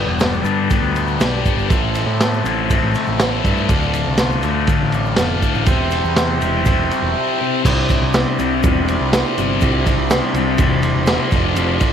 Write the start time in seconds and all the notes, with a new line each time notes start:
Already playing: G2 B3 A4 B4 D5 G5
0.07 E1
0.20 G4, snare, ride, shaker
0.33 shaker
0.44 G2 D4, ride, shaker
0.70 B3, kick, ride, shaker
0.82 D2
0.94 G3, ride, shaker
1.07 shaker
1.19 B1 D4, snare, ride, shaker
1.45 G3, kick, ride, shaker
1.57 G1, shaker
1.69 A1 A2 A4 C5 E5 A5, kick, ride, shaker
1.95 C4, ride, shaker
2.06 A2
2.20 A4, snare, ride, shaker
2.33 shaker
2.44 A1 E4, ride, shaker
2.70 C4, kick, ride, shaker
2.83 A1
2.94 A3, ride, shaker
3.07 A1, shaker
3.19 E4, snare, ride, shaker
3.45 G2 A3, kick, ride, shaker
3.57 shaker
3.68 D1 D2 D5 F5, kick, ride, shaker
3.82 shaker
3.93 D3, ride, shaker
4.07 C2
4.18 F4, snare, ride, shaker
4.32 shaker
4.43 D2 A3, ride, shaker
4.67 D3, kick, ride, shaker
4.81 A1
4.92 A2, ride, shaker
5.05 shaker
5.17 F1 A3, snare, ride, shaker
5.42 A2, kick, ride, shaker
5.55 A1, shaker
5.66 E1 C3 G4 C5 E5 G5, kick, ride, shaker
5.91 E4, ride, shaker
6.04 E2, shaker
6.16 C5, snare, ride, shaker
6.41 E1 G4, ride, shaker
6.65 E4, kick, ride, shaker
6.78 E1
6.91 C4, ride, shaker
7.02 E1
7.17 G4
7.40 C4
7.65 C2 C3 G3 C4 D4 E4 G4 C5 D5, kick, crash, shaker
7.89 G3 C4, kick, ride, shaker
8.02 C2
8.14 snare, ride, shaker
8.39 C2 G3 C4, ride, shaker
8.63 E1 C3 G3 C4, kick, ride, shaker
8.88 G3 C4, ride, shaker
9.00 C2
9.12 C3 G3 C4, snare, ride, shaker
9.38 G1 G3 C4, ride, shaker
9.61 C2 C3 G3 C4, kick, ride, shaker
9.86 G3 C4, kick, ride, shaker
9.97 C2
10.10 snare, ride, shaker
10.34 C2 C4, ride, shaker
10.38 G3
10.58 E1 C3 G3 C4, kick, ride, shaker
10.83 G3 C4, ride, shaker
10.94 E1
11.07 C3 G3 C4, snare, ride, shaker
11.31 F1 F2 C3 F3 F4 A4, kick, ride, shaker
11.56 F1 F2 C3 F3, ride, shaker
11.80 C3 F3, kick, ride, shaker